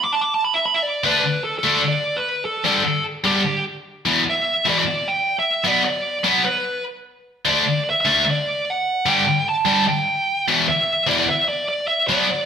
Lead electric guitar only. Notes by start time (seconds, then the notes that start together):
0.04 D6
0.12 A5
0.21 D6
0.34 A5
0.44 B5
0.54 E5
0.66 B5
0.74 E5
0.83 D5
1.05 B4
1.44 A4
1.59 A4
1.88 D5
2.17 B4
2.45 A4
2.66 A4
3.25 G4
4.30 E5
4.69 D5
4.79 D5
5.08 G5
5.39 E5
5.68 D5
5.85 D5
6.45 B4
7.49 D5
7.90 E5
8.01 E5
8.31 D5
8.70 F#5
9.08 G5
9.49 A5
9.88 G5
10.69 E5
11.08 D5
11.20 D5
11.29 E5
11.49 D5
11.69 D5
11.88 E5
12.07 D5